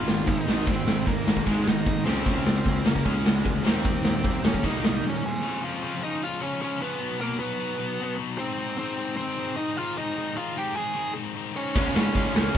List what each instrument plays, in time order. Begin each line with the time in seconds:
Already playing: picked electric bass G#1, distorted electric guitar G#2 D#3 G#3 D#4, lead electric guitar F4 F5
0.07 overdriven electric guitar G#2 D#3, snare
0.26 picked electric bass G#1, overdriven electric guitar G#2 D#3, lead electric guitar D#4 D#5, kick, ride
0.47 picked electric bass G#1, overdriven electric guitar G#2 D#3 G#3, snare
0.67 picked electric bass G#1, overdriven electric guitar G#2 D#3, distorted electric guitar G#3, lead electric guitar C4 C5, kick, ride
0.86 picked electric bass G#1, overdriven electric guitar G#2 D#3, snare
1.06 picked electric bass G#1, overdriven electric guitar G#2 D#3, lead electric guitar A#3 A#4, kick, ride
1.26 picked electric bass G#1, overdriven electric guitar G#2 D#3, snare
1.37 kick
1.46 picked electric bass G#1, overdriven electric guitar G#2 D#3 G#3, lead electric guitar G#3 G#4, kick, ride
1.66 overdriven electric guitar G#2 D#3, lead electric guitar D#4 D#5, snare
1.85 picked electric bass G#1, overdriven electric guitar G#2 D#3, kick, ride
2.05 picked electric bass C#2, overdriven electric guitar C#3 G#3 C#4, lead electric guitar C4 C5, snare
2.25 picked electric bass C#2, overdriven electric guitar C#3 G#3 C#4, kick, ride
2.44 picked electric bass C#2, overdriven electric guitar C#3 G#3, snare
2.65 picked electric bass C#2, overdriven electric guitar C#3 G#3, kick, ride
2.84 picked electric bass C#2, overdriven electric guitar C#3 G#3, lead electric guitar A#3 A#4, distorted electric guitar C#4, snare
2.96 kick
3.05 picked electric bass C#2, overdriven electric guitar C#3 G#3 C#4, lead electric guitar G#3 G#4, kick, ride
3.25 overdriven electric guitar C#3 G#3, snare
3.44 picked electric bass D2, overdriven electric guitar C#3 G#3, kick, ride
3.64 picked electric bass D#2, overdriven electric guitar D#3 G3 A#3 D#4, lead electric guitar C4 C5, distorted electric guitar D#4, snare
3.85 picked electric bass D#2, overdriven electric guitar D#3 G3 A#3, kick, ride
4.04 picked electric bass D#2, overdriven electric guitar D#3 G3 A#3, snare
4.24 picked electric bass D#2, overdriven electric guitar D#3 G3 A#3, kick, ride
4.44 picked electric bass D#2, overdriven electric guitar D#3 G3 A#3, distorted electric guitar A#3 D#4, lead electric guitar C#4 C#5, snare
4.54 kick
4.63 picked electric bass C2, overdriven electric guitar D#3 G3 A#3 D#4, lead electric guitar D#4, kick, ride
4.67 lead electric guitar D#5
4.83 overdriven electric guitar D#3 G3 A#3, lead electric guitar D#4 D#5, snare
5.03 overdriven electric guitar D#3 G3 A#3
5.07 lead electric guitar C#4 C#5
5.23 overdriven electric guitar D#3 G3 A#3, lead electric guitar C4 G#5
5.27 lead electric guitar G#4 C5
5.42 overdriven electric guitar C#3 F3 G#3 C#4 F4
5.63 overdriven electric guitar C#3 F3 G#3 C#4 F4, lead electric guitar F4 F5
5.82 overdriven electric guitar C#3 F3 G#3 C#4 F4
6.02 overdriven electric guitar C#3 F3 G#3 C#4 F4, lead electric guitar D#4 D#5
6.23 overdriven electric guitar C#3 F3 G#3 C#4 F4, lead electric guitar F4 F5
6.41 overdriven electric guitar C#3 F3 G#3 C#4 F4, lead electric guitar C#4 C#5
6.61 overdriven electric guitar C#3 F3 G#3 C#4 F4, lead electric guitar C#4 C#5
6.80 overdriven electric guitar C#3 F3 G#3 C#4 F4, lead electric guitar B3 B4
6.99 overdriven electric guitar B2 F#3 B3 D#4
7.20 overdriven electric guitar B2 F#3 B3 D#4, lead electric guitar A#3 A#4
7.39 overdriven electric guitar B2 F#3 B3 D#4, lead electric guitar B3 B4
7.59 overdriven electric guitar B2 F#3 B3 D#4
7.79 overdriven electric guitar B2 F#3 B3 D#4
7.99 overdriven electric guitar B2 F#3 B3 D#4
8.18 overdriven electric guitar B2 F#3 B3 D#4
8.38 overdriven electric guitar G#2 D#3 G#3 C4 D#4, lead electric guitar C4 C5
8.57 overdriven electric guitar G#2 D#3 G#3 C4 D#4
8.77 overdriven electric guitar G#2 D#3 G#3 C4 D#4, lead electric guitar C4 C5
8.97 overdriven electric guitar G#2 D#3 G#3 C4 D#4
9.17 overdriven electric guitar G#2 D#3 G#3 C4 D#4, lead electric guitar C4 C5
9.37 overdriven electric guitar G#2 D#3 G#3 C4 D#4
9.56 overdriven electric guitar G#2 D#3 G#3 C4 D#4, lead electric guitar D#4 D#5
9.77 overdriven electric guitar G#2 D#3 G#3 C4 D#4, lead electric guitar F4 F5
9.97 overdriven electric guitar G#2 D#3 G#3 C4 D#4, lead electric guitar D#4 D#5
10.16 overdriven electric guitar G#2 D#3 G#3 C4 D#4
10.36 overdriven electric guitar G#2 D#3 G#3 C4 D#4, lead electric guitar F4 F5
10.56 overdriven electric guitar G#2 D#3 G#3 C4 D#4, lead electric guitar G4 G5
10.76 overdriven electric guitar G#2 D#3 G#3 C4 D#4, lead electric guitar G#4 G#5
10.95 overdriven electric guitar G#2 D#3 G#3 C4 D#4
11.15 overdriven electric guitar G#2 D#3 G#3 C4 D#4
11.35 overdriven electric guitar G#2 D#3 G#3 C4 D#4
11.54 overdriven electric guitar G#2 D#3 G#3 C4 D#4, lead electric guitar C#4 C#5
11.75 picked electric bass C#2, overdriven electric guitar C#3 G#3 C#4 F4, kick, crash
11.94 picked electric bass G#2, overdriven electric guitar C#3 G#3 C#4 F4, lead electric guitar C#4 C#5, snare
12.14 picked electric bass G#2, overdriven electric guitar C#3 G#3 C#4 F4, kick, ride
12.34 picked electric bass C#2, overdriven electric guitar C#3 G#3 C#4 F4, lead electric guitar C#4 C#5, snare
12.54 picked electric bass C#2, overdriven electric guitar C#3 G#3, kick, ride